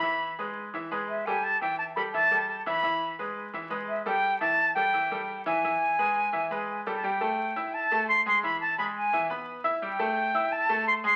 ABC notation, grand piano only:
X:1
M:4/4
L:1/8
Q:1/4=172
K:Ephr
V:1 name="Grand piano"
[E,Ee]2 [^G,^GB]2 [E,Ee] [G,GB]2 [=G,=GA]- | [G,GA] [E,Ee]2 [G,GA] [E,Ee] [G,GA]2 [E,Ee] | [E,Ee]2 [^G,^GB]2 [E,Ee] [G,GB]2 [=G,=GA]- | [G,GA] [E,Ee]2 [G,GA] [E,Ee] [G,GA]2 [E,Ee] |
[E,Ee]2 [^G,^GB]2 [E,Ee] [G,GB]2 [=G,=GA] | [G,Gg] [A,Aa]2 [Eee']2 [A,Aa]2 [^G,^G^g] | [E,Ee]2 [^G,^G^g]2 [E,Ee] [B,Bb]2 [Eee'] | [G,Gg] [A,Aa]2 [Eee']2 [A,Aa]2 [^G,^G^g] |]